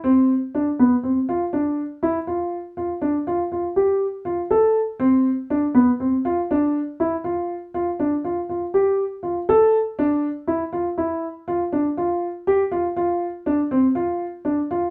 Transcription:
X:1
M:5/4
L:1/8
Q:1/4=121
K:Ddor
V:1 name="Grand piano"
C2 D B, C F D2 E F- | F F D F F G2 F A2 | C2 D B, C F D2 E F- | F F D F F G2 F A2 |
D2 E F E2 F D F2 | G F F2 D C F2 D F |]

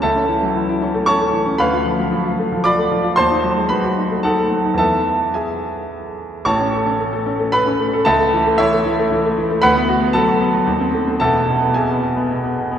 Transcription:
X:1
M:3/4
L:1/16
Q:1/4=113
K:A
V:1 name="Grand piano"
[Aea]8 [cac']4 | [B=fb]8 [dbd']4 | [^Ba^b]4 [=B=b]4 [Afa]4 | [Aea]4 [Geg]4 z4 |
[cac']8 [Bb]4 | [Aea]4 [Ece]6 z2 | [Bfb]4 [Aa]8 | [Aea]4 [Geg]6 z2 |]
V:2 name="Grand piano"
C,, C E, F, E, E C A, C A, E, C | D,, =F =F, ^F, =F, F A, F, F A, F, F | ^D,, ^D F, G, F, F D A, D A, F, D | [E,,E,B,]12 |
[A,,,A,,] C A C A, A C A, A C A, A | C,, A, E, A, E, A, E, A, E, A, E, A, | D,, B, F B, F, F B, F, _E,, =C A, C | [E,,,E,,] B, B,, B, B,, B, B,, B, B,, B, B,, B, |]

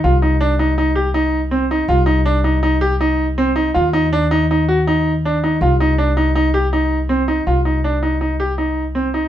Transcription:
X:1
M:5/4
L:1/8
Q:1/4=161
K:Cm
V:1 name="Grand piano"
F E D E E G E2 C E | F E D E E G E2 C E | F E D E E _G E2 D E | F E D E E G E2 C E |
F E D E E G E2 C E |]
V:2 name="Upright bass" clef=bass
C,,8- C,,2 | C,,8- C,,2 | E,,8- E,,2 | C,,8- C,,2 |
C,,8- C,,2 |]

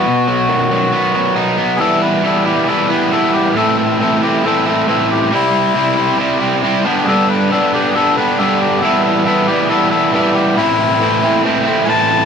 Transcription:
X:1
M:4/4
L:1/8
Q:1/4=137
K:Em
V:1 name="Melodica"
F6 z2 | [^GA] B A =G [^GA] B A =G | [^GA] A A =G [^GA] A A =G | E4 z4 |
[^GA] B A =G [^GA] B A =G | [^GA] A A =G [^GA] A A =G | E4 z2 [^ga]2 |]
V:2 name="Overdriven electric guitar"
B,, F, ^D, F, B, F, ^D B, | [E,G,B,E]2 [E,G,B,E] [G,B,E] [E,G,B,E] [G,B,E] [E,G,B,E]2 | [A,,E,A,CE]2 [E,A,CE] [A,CE] [E,A,CE] [A,CE] [A,,E,A,CE]2 | [C,G,CE]2 [C,G,CE] [G,CE] [C,G,CE] [G,CE] [C,G,CE] [G,,D,G,B,D] |
[G,,D,G,B,D]2 [D,G,B,D] [G,B,D] [D,G,B,D] [G,B,D] [G,,D,G,B,D]2 | [E,G,B,E]2 [E,G,B,E] [G,B,E] [E,G,B,E] [G,B,E] [E,G,B,E]2 | [A,,E,A,CE]2 [E,A,CE] [A,CE] [E,A,CE] [A,CE] [A,,E,A,CE]2 |]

